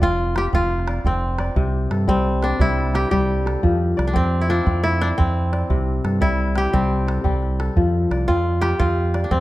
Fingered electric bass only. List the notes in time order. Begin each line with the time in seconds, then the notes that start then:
0.02 F1
0.53 F1
1.04 F1
1.56 C2
1.91 G2
2.08 C2
2.59 C2
3.11 C2
3.63 F2
3.98 C2
4.15 F2
4.67 F2
5.19 F2
5.69 C2
6.04 G2
6.22 C2
6.74 C2
7.24 C2
7.76 F2
8.11 C2
8.29 F2
8.80 F2
9.31 F2